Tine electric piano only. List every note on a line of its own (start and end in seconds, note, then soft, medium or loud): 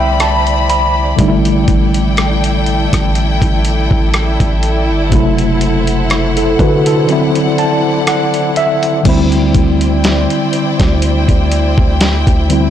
0.00 1.13 D3 medium
0.00 1.14 A3 medium
0.00 1.15 C4 medium
0.00 1.16 E4 medium
0.00 1.20 E5 medium
0.00 0.19 G5 medium
0.21 0.66 A5 medium
0.70 1.15 B5 medium
1.16 5.07 D3 medium
1.16 5.08 G3 medium
1.16 5.09 A3 medium
1.22 1.27 D#4 medium
1.28 5.13 E4 medium
5.10 7.04 C3 medium
5.10 7.05 F#3 medium
5.10 7.06 A3 medium
5.15 6.10 E4 medium
6.37 6.59 E4 medium
6.37 6.59 A4 medium
6.60 6.86 F#4 medium
6.60 6.85 B4 medium
6.87 7.11 E4 medium
6.87 7.33 A4 medium
7.07 9.01 D3 medium
7.07 9.01 F#3 medium
7.07 9.02 C4 medium
7.12 9.03 E4 medium
7.59 8.04 A5 medium
8.08 8.53 F#5 medium
8.57 9.03 E5 medium
9.03 12.45 D3 medium
9.03 12.46 G3 medium
9.03 12.47 C4 medium
9.09 12.47 E4 medium
12.49 12.70 D3 medium
12.49 12.70 G3 medium
12.49 12.70 C4 soft
12.49 12.70 E4 medium